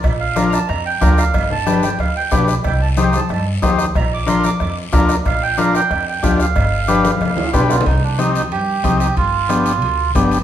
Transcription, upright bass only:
X:1
M:4/4
L:1/8
Q:1/4=184
K:Bb
V:1 name="Upright bass" clef=bass
B,,,4 F,,2 D,,2 | G,,,4 D,,2 =B,,,2 | C,,4 G,,2 E,,2 | B,,,4 F,,2 D,,2 |
B,,,4 F,,2 D,,2 | G,,,4 D,,2 =B,,,2 | [K:Cm] C,,4 G,,2 C,,2 | G,,,4 D,,2 G,,,2 |]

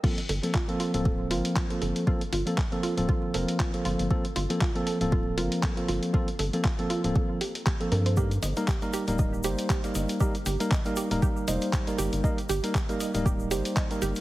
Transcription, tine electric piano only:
X:1
M:4/4
L:1/16
Q:"Swing 16ths" 1/4=118
K:Gm
V:1 name="Tine electric piano"
[F,B,CA] z2 [F,B,CA] z [F,B,CA]2 [F,B,CA]3 [F,B,CB]3 [F,B,CA]3 | [F,B,CA] z2 [F,B,CA] z [F,B,CA]2 [F,B,CA]3 [F,B,CB]3 [F,B,CA]3 | [F,B,CA] z2 [F,B,CA] z [F,B,CA]2 [F,B,CA]3 [F,B,CB]3 [F,B,CA]3 | [F,B,CA] z2 [F,B,CA] z [F,B,CA]2 [F,B,CA]3 z3 [F,B,CA]3 |
[G,B,EB] z2 [G,B,EB] z [G,B,EB]2 [G,B,EB]3 [G,B,Ec]3 [G,B,EB]3 | [G,B,EB] z2 [G,B,EB] z [G,B,EB]2 [G,B,EB]3 [G,B,Ec]3 [G,B,EB]3 | [G,B,EB] z2 [G,B,EB] z [G,B,EB]2 [G,B,EB]3 [G,B,Ec]3 [G,B,EB]3 |]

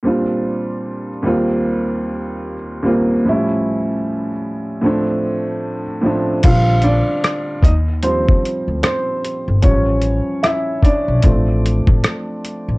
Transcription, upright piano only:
X:1
M:4/4
L:1/16
Q:"Swing 16ths" 1/4=75
K:Bb
V:1 name="Upright piano"
[B,,G,CDF]4- [B,,G,CDF] z [E,,G,B,CF]6 z2 [E,,G,B,CF]2 | [A,,F,G,^C=E]4- [A,,F,G,CE] z3 [A,,F,A,=CD]4 z2 [A,,F,A,CD]2 | [Ff]2 [Dd]4 [Ee]2 [Cc]4 [Cc]4 | ^c4 [=E=e]2 [Dd]8 z2 |]
V:2 name="Upright piano" clef=bass
z16 | z16 | [D,G,C]2 z6 [F,G,]6 z2 | [F,G,^C]6 z2 [F,A,=C]8 |]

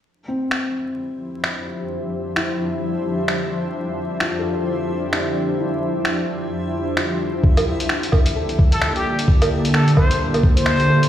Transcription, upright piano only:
X:1
M:4/4
L:1/16
Q:"Swing 16ths" 1/4=130
K:Dm
V:1 name="Upright piano"
z2 C8- C z4 z | z4 E8- E z3 | z4 F A c6 D4 | E8- E z3 F4- |
F2 z6 A8- | A z12 z A2 |]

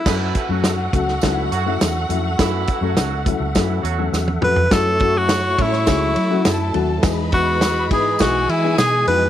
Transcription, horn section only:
X:1
M:4/4
L:1/16
Q:1/4=103
K:F#phr
V:1 name="Horn section"
[E,E]3 [F,F]3 z2 [E,E]2 [F,F]2 z4 | [E,E]3 [F,F]3 z2 [E,E]2 [F,F]2 z4 | [K:F#dor] z16 | z16 |]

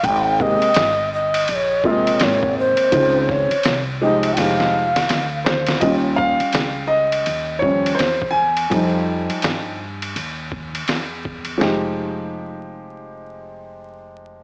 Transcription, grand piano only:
X:1
M:4/4
L:1/8
Q:"Swing 16ths" 1/4=83
K:Fm
V:1 name="Grand piano"
z [C,A,B,G] z3 [B,,C,A,B,F]3 | [E,CDF] z2 [F,A,EG] [F,A,EG] z2 c | e f2 e2 d c a- | a6- a z |
[F,A,EG]8 |]
V:2 name="Grand piano" clef=bass
z8 | z8 | [G,DF]4- [G,DF] [F,G,D] z2 | [F,G,E]3 z4 z |
z8 |]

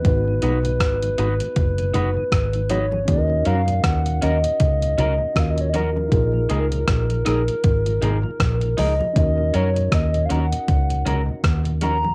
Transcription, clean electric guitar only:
X:1
M:4/4
L:1/8
Q:"Swing 16ths" 1/4=79
K:Ebm
V:1 name="Clean electric guitar"
z [EGc] z [EGc] z [EGc] z [EGc] | z [DGB] z [DGB] z [DGB] z [DGB] | z [EAB] z [EAB] z [EAB] z [EAB] | z [DGB] z [DGB] z [DGB] z [DGB] |]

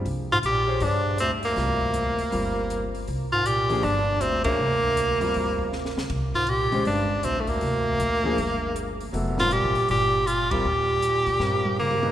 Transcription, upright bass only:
X:1
M:4/4
L:1/8
Q:"Swing" 1/4=159
K:Ebmix
V:1 name="Upright bass" clef=bass
C,,2 B,,,2 G,,4 | C,,3 z G,,,4 | C,,4 G,,,3 B,,, | C,,3 z G,,,3 D,, |
C,,3 z G,,,2 B,,,2 | C,,2 B,,,2 G,,,4 | F,,,2- (3F,,, G,,, B,,, G,,,4 | E,,3 B,, G,,4 |]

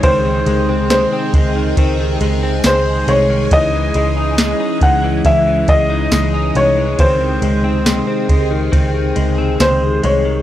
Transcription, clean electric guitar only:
X:1
M:4/4
L:1/16
Q:1/4=69
K:G#phr
V:1 name="Clean electric guitar" clef=bass
[D,^B,] D, G, B, G, B, G, D, [D,B,] D, G, B, G,2 G, D, | [E,D] E, G, D G, D G, E, E, E, G, D G, D G, E, | [D,^B,] D, G, B, G, B, G, D, [D,B,] D, G, B, G,2 G, D, |]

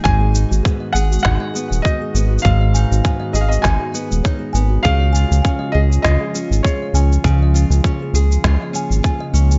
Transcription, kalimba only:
X:1
M:4/4
L:1/16
Q:"Swing 16ths" 1/4=100
K:G#dor
V:1 name="Kalimba"
F G G F G d g F g d G d F G G F | G d g F g d G d F G d G, c G g F | G d g E g d G E E G G E G d g E | g d G E E G G E G d g E g d G E |]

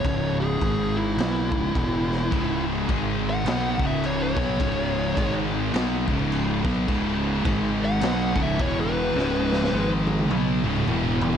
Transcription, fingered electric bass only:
X:1
M:4/4
L:1/8
Q:"Swing" 1/4=105
K:C#m
V:1 name="Fingered electric bass" clef=bass
C,,,2 G,,,2 B,,, C,,, E,,,2 | C,,,2 G,,,2 B,,, C,,,2 B,,, | C,,,2 G,,,2 B,,, C,,,2 B,,, | C,,,2 G,,,2 B,,, C,,, E,,,2 |
C,,,2 G,,,2 B,,, C,,, E,,,2 |]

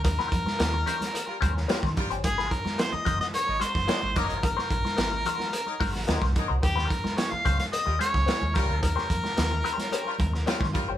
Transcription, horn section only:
X:1
M:4/4
L:1/16
Q:1/4=109
K:Eb
V:1 name="Horn section"
z8 z [G,FB] z2 [G,FB] z [G,FB]2 | z8 z [_G,EB] z2 [G,EB] z [G,EB]2 | z8 z [_G,EB] z2 [G,EB] z [G,EB]2 | z8 z [G,FB] z2 [G,FB] z [G,FB]2- |
[G,FB] z8 [G,FB] z2 [G,FB] z [G,FB]2 |]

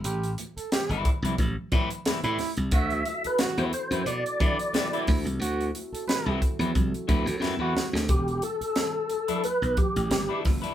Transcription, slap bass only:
X:1
M:4/4
L:1/16
Q:"Swing 16ths" 1/4=89
K:Em
V:1 name="Slap bass" clef=bass
A,,,2 z3 G,,, z C,, A,,, z A,, z2 A,, z C,, | D,,2 z3 E,, z F,, B,, z D, z3 D,, C,, | D,,2 z3 C,, z E,, C,, z D,, D,, F,, E,, z D,, | E,,,2 z6 z B,,, z A,,, G,,, z F,,, z |]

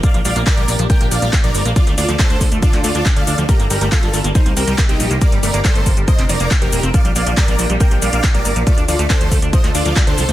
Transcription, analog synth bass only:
X:1
M:4/4
L:1/16
Q:1/4=139
K:Bb
V:1 name="Analog synth bass" clef=bass
z B,,, B,,, B,,, z B,,, B,,, B,,, z B,,, B,,, B,,, z B,,, G,,, B,,, | z D,, D,, D,, z D,, D,, D,, z D,, D,, D,, z D,, D,, D,, | z G,,, G,,, G,,, z G,,, G,,, G,,, z C,, C,, C,, z C,, B,,, C,, | z G,,, G,,, G,,, z G,,, G,,, G,,, z F,,, F,,, F,,, z F,,, E,,, F,,, |
z B,,, B,,, B,,, z B,,, B,,, B,,, z B,,, B,,, B,,, z B,,, G,,, B,,, | z D,, D,, D,, z D,, D,, D,, z D,, D,, D,, z D,, C,, D,, |]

